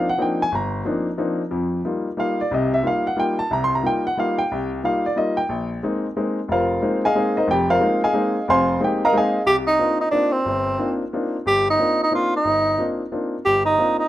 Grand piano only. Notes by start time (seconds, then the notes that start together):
0.09 F#5
0.18 F3 A#3 C4 D4 D#4 G5
0.42 G#5
0.52 G1 A#5
0.85 F3 A#3 C4 D4 D#4
1.18 F3 A#3 C4 D4 D#4
1.51 F2 F3
1.85 G3 A#3 D#4 F4
2.17 G3 A#3 D#4 F4 F5
2.41 D5
2.51 C2 C3 D#5
2.74 E5
2.83 G3 A#3 D#4 F4 F5
3.07 F#5
3.16 G3 A#3 D#4 F4 G5
3.39 A5
3.51 C2 C3 A#5
3.64 C6
3.75 A#5
3.82 G3 A#3 D#4 F4
3.87 G5
4.07 F#5
4.17 G3 A#3 D#4 F4 F5
4.38 G5
4.52 C2
4.83 G3 A#3 D#4 F4 F5
5.06 D5
5.16 G3 A#3 D#4 F4 D#5
5.37 G5
5.49 A#1
5.83 G#3 A#3 C4 D#4
6.17 G#3 A#3 C4 D#4
6.48 F1 F4 A#4 C5 F5
6.82 G#3 A#3 C4 D#4
7.05 G#4 D#5 F5 G#5
7.15 G#3 A#3 C4 D#4
7.37 D#4 A#4 C5 D#5
7.47 F1 F2 G5
7.52 G4
7.70 F4 A#4 C5 F5
7.80 G#3 A#3 C4 D#4
8.04 G#4 D#5 F5 G#5
8.13 G#3 A#3 C4 D#4
8.48 F1 F2 C5 F5 G#5 C6
8.80 G#3 A#3 C4 D#4 G5
8.84 G4
9.05 A#4 D#5 F5 A#5
9.13 G#3 A#3 C4 D#4
9.17 G#4 D#5 F5 G#5
9.46 C2
9.79 A#3 C4 D4 D#4 F4
10.12 A#3 C4 D4 D#4 F4
10.46 G1
10.79 A#3 C4 D4 D#4 F4
11.13 A#3 C4 D4 D#4 F4
11.46 G1
11.79 A#3 C4 D4 D#4 F4
12.11 A#3 C4 D4 D#4 F4
12.45 G1
12.78 A#3 C4 D4 D#4 F4
13.12 A#3 C4 D4 D#4 F4
13.46 G1
13.78 A#3 C4 D4 D#4 F4